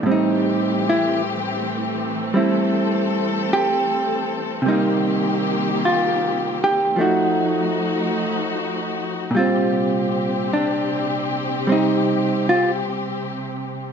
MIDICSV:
0, 0, Header, 1, 3, 480
1, 0, Start_track
1, 0, Tempo, 1153846
1, 13, Time_signature, 4, 2, 24, 8
1, 1933, Tempo, 1167315
1, 5748, End_track
2, 0, Start_track
2, 0, Title_t, "Hollow-body jazz guitar"
2, 0, Program_c, 0, 26
2, 13, Note_on_c, 0, 45, 39
2, 24, Note_on_c, 0, 55, 35
2, 27, Note_on_c, 0, 60, 38
2, 48, Note_on_c, 0, 63, 61
2, 350, Note_off_c, 0, 63, 0
2, 372, Note_on_c, 0, 64, 71
2, 504, Note_off_c, 0, 64, 0
2, 968, Note_off_c, 0, 55, 0
2, 973, Note_on_c, 0, 55, 31
2, 975, Note_off_c, 0, 60, 0
2, 980, Note_on_c, 0, 60, 35
2, 986, Note_on_c, 0, 64, 41
2, 1469, Note_on_c, 0, 67, 78
2, 1922, Note_on_c, 0, 48, 38
2, 1925, Note_off_c, 0, 67, 0
2, 1932, Note_off_c, 0, 45, 0
2, 1933, Note_off_c, 0, 55, 0
2, 1936, Note_off_c, 0, 60, 0
2, 1939, Note_off_c, 0, 64, 0
2, 1939, Note_on_c, 0, 55, 38
2, 1948, Note_on_c, 0, 63, 55
2, 1951, Note_on_c, 0, 58, 38
2, 1960, Note_off_c, 0, 63, 0
2, 1965, Note_on_c, 0, 63, 37
2, 2429, Note_on_c, 0, 65, 49
2, 2739, Note_off_c, 0, 65, 0
2, 2752, Note_on_c, 0, 67, 72
2, 2884, Note_off_c, 0, 55, 0
2, 2885, Note_off_c, 0, 48, 0
2, 2885, Note_on_c, 0, 53, 38
2, 2892, Note_off_c, 0, 67, 0
2, 2893, Note_off_c, 0, 58, 0
2, 2894, Note_on_c, 0, 57, 41
2, 2897, Note_off_c, 0, 63, 0
2, 2902, Note_on_c, 0, 63, 43
2, 2905, Note_on_c, 0, 66, 47
2, 3850, Note_on_c, 0, 46, 40
2, 3855, Note_off_c, 0, 53, 0
2, 3859, Note_off_c, 0, 57, 0
2, 3863, Note_off_c, 0, 63, 0
2, 3865, Note_off_c, 0, 66, 0
2, 3866, Note_on_c, 0, 55, 42
2, 3873, Note_on_c, 0, 65, 55
2, 3883, Note_on_c, 0, 60, 48
2, 4331, Note_off_c, 0, 65, 0
2, 4354, Note_on_c, 0, 62, 55
2, 4811, Note_off_c, 0, 62, 0
2, 4817, Note_off_c, 0, 55, 0
2, 4822, Note_on_c, 0, 55, 33
2, 4825, Note_off_c, 0, 60, 0
2, 4830, Note_on_c, 0, 60, 31
2, 4841, Note_on_c, 0, 63, 61
2, 5148, Note_off_c, 0, 63, 0
2, 5159, Note_on_c, 0, 65, 71
2, 5245, Note_off_c, 0, 65, 0
2, 5748, Note_off_c, 0, 46, 0
2, 5748, Note_off_c, 0, 55, 0
2, 5748, Note_off_c, 0, 60, 0
2, 5748, End_track
3, 0, Start_track
3, 0, Title_t, "String section"
3, 0, Program_c, 1, 48
3, 0, Note_on_c, 1, 52, 55
3, 25, Note_on_c, 1, 67, 63
3, 26, Note_on_c, 1, 57, 52
3, 26, Note_on_c, 1, 60, 52
3, 968, Note_off_c, 1, 67, 0
3, 975, Note_on_c, 1, 69, 62
3, 1917, Note_off_c, 1, 52, 0
3, 1922, Note_off_c, 1, 57, 0
3, 1923, Note_on_c, 1, 58, 52
3, 1924, Note_off_c, 1, 69, 0
3, 1927, Note_on_c, 1, 67, 65
3, 1929, Note_on_c, 1, 51, 56
3, 2876, Note_off_c, 1, 58, 0
3, 2878, Note_off_c, 1, 67, 0
3, 2879, Note_off_c, 1, 51, 0
3, 2880, Note_off_c, 1, 60, 0
3, 2886, Note_on_c, 1, 66, 62
3, 2890, Note_on_c, 1, 53, 60
3, 2891, Note_on_c, 1, 57, 51
3, 2891, Note_on_c, 1, 63, 51
3, 3845, Note_off_c, 1, 66, 0
3, 3847, Note_off_c, 1, 53, 0
3, 3848, Note_off_c, 1, 57, 0
3, 3848, Note_off_c, 1, 63, 0
3, 3857, Note_on_c, 1, 67, 58
3, 3859, Note_on_c, 1, 48, 53
3, 3862, Note_on_c, 1, 60, 49
3, 5748, Note_off_c, 1, 48, 0
3, 5748, Note_off_c, 1, 60, 0
3, 5748, Note_off_c, 1, 67, 0
3, 5748, End_track
0, 0, End_of_file